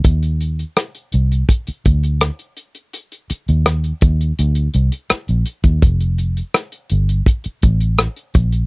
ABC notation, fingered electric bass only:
X:1
M:4/4
L:1/16
Q:1/4=83
K:Eb
V:1 name="Fingered electric bass" clef=bass
E,,4 z2 C,,2 z2 D,,3 z3 | z3 E,,3 E,,2 D,,2 C,, z2 B,,, z E,, | F,,,4 z2 G,,,2 z2 =A,,,3 z B,,,2 |]